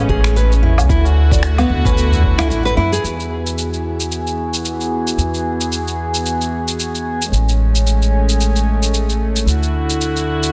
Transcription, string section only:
0, 0, Header, 1, 2, 480
1, 0, Start_track
1, 0, Tempo, 535714
1, 801, Time_signature, 4, 2, 24, 8
1, 9426, End_track
2, 0, Start_track
2, 0, Title_t, "String section"
2, 0, Program_c, 0, 48
2, 0, Note_on_c, 0, 56, 86
2, 0, Note_on_c, 0, 57, 77
2, 0, Note_on_c, 0, 61, 99
2, 780, Note_off_c, 0, 56, 0
2, 780, Note_off_c, 0, 57, 0
2, 780, Note_off_c, 0, 61, 0
2, 799, Note_on_c, 0, 57, 75
2, 799, Note_on_c, 0, 64, 81
2, 800, Note_on_c, 0, 50, 86
2, 801, Note_on_c, 0, 66, 92
2, 2701, Note_off_c, 0, 50, 0
2, 2701, Note_off_c, 0, 57, 0
2, 2701, Note_off_c, 0, 64, 0
2, 2702, Note_off_c, 0, 66, 0
2, 2716, Note_on_c, 0, 66, 61
2, 2718, Note_on_c, 0, 52, 66
2, 2718, Note_on_c, 0, 59, 61
2, 2718, Note_on_c, 0, 68, 78
2, 6523, Note_off_c, 0, 66, 0
2, 6524, Note_off_c, 0, 52, 0
2, 6524, Note_off_c, 0, 59, 0
2, 6524, Note_off_c, 0, 68, 0
2, 6558, Note_on_c, 0, 56, 67
2, 6559, Note_on_c, 0, 57, 68
2, 6559, Note_on_c, 0, 61, 79
2, 8461, Note_off_c, 0, 56, 0
2, 8461, Note_off_c, 0, 61, 0
2, 8479, Note_on_c, 0, 50, 71
2, 8479, Note_on_c, 0, 66, 75
2, 8480, Note_on_c, 0, 64, 66
2, 9426, Note_off_c, 0, 50, 0
2, 9426, Note_off_c, 0, 57, 0
2, 9426, Note_off_c, 0, 64, 0
2, 9426, Note_off_c, 0, 66, 0
2, 9426, End_track
0, 0, End_of_file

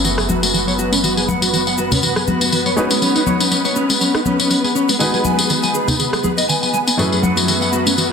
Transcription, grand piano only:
0, 0, Header, 1, 2, 480
1, 0, Start_track
1, 0, Tempo, 495868
1, 1001, Time_signature, 4, 2, 24, 8
1, 7863, End_track
2, 0, Start_track
2, 0, Title_t, "Grand piano"
2, 0, Program_c, 0, 0
2, 0, Note_on_c, 0, 42, 69
2, 0, Note_on_c, 0, 57, 62
2, 0, Note_on_c, 0, 61, 63
2, 0, Note_on_c, 0, 64, 60
2, 0, Note_on_c, 0, 68, 62
2, 0, Note_on_c, 0, 71, 74
2, 2651, Note_off_c, 0, 42, 0
2, 2653, Note_off_c, 0, 57, 0
2, 2655, Note_off_c, 0, 61, 0
2, 2658, Note_off_c, 0, 64, 0
2, 2659, Note_off_c, 0, 68, 0
2, 2661, Note_off_c, 0, 71, 0
2, 2671, Note_on_c, 0, 56, 70
2, 2676, Note_on_c, 0, 61, 60
2, 2681, Note_on_c, 0, 63, 63
2, 2686, Note_on_c, 0, 66, 62
2, 2691, Note_on_c, 0, 71, 73
2, 4810, Note_off_c, 0, 56, 0
2, 4813, Note_off_c, 0, 61, 0
2, 4815, Note_off_c, 0, 63, 0
2, 4817, Note_off_c, 0, 66, 0
2, 4820, Note_off_c, 0, 71, 0
2, 4831, Note_on_c, 0, 56, 70
2, 4834, Note_on_c, 0, 59, 62
2, 4840, Note_on_c, 0, 63, 64
2, 4845, Note_on_c, 0, 66, 64
2, 4849, Note_on_c, 0, 71, 75
2, 6730, Note_off_c, 0, 56, 0
2, 6731, Note_off_c, 0, 59, 0
2, 6734, Note_off_c, 0, 63, 0
2, 6737, Note_off_c, 0, 66, 0
2, 6739, Note_off_c, 0, 71, 0
2, 6751, Note_on_c, 0, 42, 70
2, 6755, Note_on_c, 0, 57, 62
2, 6759, Note_on_c, 0, 61, 62
2, 6763, Note_on_c, 0, 64, 63
2, 6766, Note_on_c, 0, 68, 61
2, 6770, Note_on_c, 0, 71, 76
2, 7863, Note_off_c, 0, 42, 0
2, 7863, Note_off_c, 0, 57, 0
2, 7863, Note_off_c, 0, 61, 0
2, 7863, Note_off_c, 0, 64, 0
2, 7863, Note_off_c, 0, 68, 0
2, 7863, Note_off_c, 0, 71, 0
2, 7863, End_track
0, 0, End_of_file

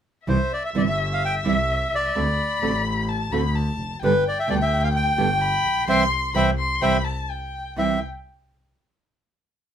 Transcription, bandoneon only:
0, 0, Header, 1, 2, 480
1, 0, Start_track
1, 0, Key_signature, 0, "major"
1, 0, Tempo, 468384
1, 280, Time_signature, 4, 2, 24, 8
1, 9984, End_track
2, 0, Start_track
2, 0, Title_t, "Bandoneon"
2, 0, Program_c, 0, 23
2, 293, Note_on_c, 0, 72, 64
2, 535, Note_off_c, 0, 72, 0
2, 546, Note_on_c, 0, 74, 58
2, 647, Note_off_c, 0, 74, 0
2, 667, Note_on_c, 0, 76, 60
2, 716, Note_off_c, 0, 76, 0
2, 792, Note_on_c, 0, 74, 61
2, 840, Note_off_c, 0, 74, 0
2, 912, Note_on_c, 0, 76, 67
2, 1014, Note_off_c, 0, 76, 0
2, 1158, Note_on_c, 0, 77, 70
2, 1265, Note_off_c, 0, 77, 0
2, 1284, Note_on_c, 0, 79, 80
2, 1383, Note_off_c, 0, 79, 0
2, 1521, Note_on_c, 0, 76, 71
2, 1996, Note_on_c, 0, 74, 63
2, 1997, Note_off_c, 0, 76, 0
2, 2894, Note_off_c, 0, 74, 0
2, 4139, Note_on_c, 0, 71, 72
2, 4349, Note_off_c, 0, 71, 0
2, 4387, Note_on_c, 0, 74, 74
2, 4493, Note_off_c, 0, 74, 0
2, 4504, Note_on_c, 0, 76, 66
2, 4601, Note_off_c, 0, 76, 0
2, 4611, Note_on_c, 0, 74, 71
2, 4661, Note_off_c, 0, 74, 0
2, 4732, Note_on_c, 0, 76, 70
2, 4945, Note_off_c, 0, 76, 0
2, 4955, Note_on_c, 0, 77, 77
2, 5007, Note_off_c, 0, 77, 0
2, 5082, Note_on_c, 0, 79, 85
2, 5991, Note_off_c, 0, 79, 0
2, 6037, Note_on_c, 0, 72, 70
2, 6037, Note_on_c, 0, 76, 73
2, 6037, Note_on_c, 0, 79, 72
2, 6185, Note_off_c, 0, 72, 0
2, 6186, Note_off_c, 0, 76, 0
2, 6186, Note_off_c, 0, 79, 0
2, 6516, Note_on_c, 0, 72, 72
2, 6519, Note_on_c, 0, 79, 66
2, 6520, Note_on_c, 0, 76, 70
2, 6666, Note_off_c, 0, 72, 0
2, 6667, Note_off_c, 0, 79, 0
2, 6668, Note_off_c, 0, 76, 0
2, 6989, Note_on_c, 0, 72, 70
2, 6990, Note_on_c, 0, 79, 73
2, 6995, Note_on_c, 0, 76, 69
2, 7144, Note_off_c, 0, 72, 0
2, 7145, Note_off_c, 0, 79, 0
2, 7148, Note_off_c, 0, 76, 0
2, 7976, Note_on_c, 0, 76, 65
2, 8196, Note_off_c, 0, 76, 0
2, 9984, End_track
0, 0, End_of_file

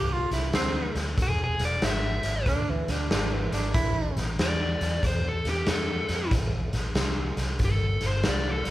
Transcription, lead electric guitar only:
0, 0, Header, 1, 2, 480
1, 0, Start_track
1, 0, Key_signature, 0, "minor"
1, 0, Tempo, 643087
1, 878, Time_signature, 4, 2, 24, 8
1, 6497, End_track
2, 0, Start_track
2, 0, Title_t, "Lead electric guitar"
2, 0, Program_c, 0, 29
2, 912, Note_on_c, 0, 68, 90
2, 1051, Note_off_c, 0, 68, 0
2, 1073, Note_on_c, 0, 68, 83
2, 1211, Note_off_c, 0, 68, 0
2, 1232, Note_on_c, 0, 74, 75
2, 1371, Note_off_c, 0, 74, 0
2, 1388, Note_on_c, 0, 76, 90
2, 1839, Note_off_c, 0, 76, 0
2, 3295, Note_on_c, 0, 74, 88
2, 3752, Note_off_c, 0, 74, 0
2, 3781, Note_on_c, 0, 72, 85
2, 3924, Note_off_c, 0, 72, 0
2, 3944, Note_on_c, 0, 69, 71
2, 4086, Note_off_c, 0, 69, 0
2, 4101, Note_on_c, 0, 67, 82
2, 4244, Note_off_c, 0, 67, 0
2, 4257, Note_on_c, 0, 69, 84
2, 4713, Note_off_c, 0, 69, 0
2, 5708, Note_on_c, 0, 69, 89
2, 6003, Note_off_c, 0, 69, 0
2, 6025, Note_on_c, 0, 72, 79
2, 6167, Note_off_c, 0, 72, 0
2, 6187, Note_on_c, 0, 74, 75
2, 6328, Note_off_c, 0, 74, 0
2, 6355, Note_on_c, 0, 69, 85
2, 6497, Note_off_c, 0, 69, 0
2, 6497, End_track
0, 0, End_of_file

